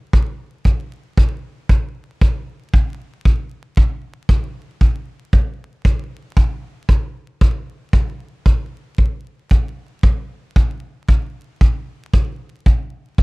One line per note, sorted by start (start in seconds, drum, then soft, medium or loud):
0.13 kick medium
0.65 kick soft
1.17 kick medium
1.69 kick medium
2.21 kick medium
2.74 kick medium
3.25 kick medium
3.77 kick medium
4.29 kick medium
4.81 kick medium
5.33 kick medium
5.85 kick medium
6.37 kick medium
6.89 kick medium
7.41 kick medium
7.93 kick medium
8.46 kick medium
8.98 kick medium
9.51 kick medium
10.03 kick medium
10.56 kick medium
11.09 kick medium
11.61 kick medium
12.13 kick medium
12.66 kick medium
13.18 kick medium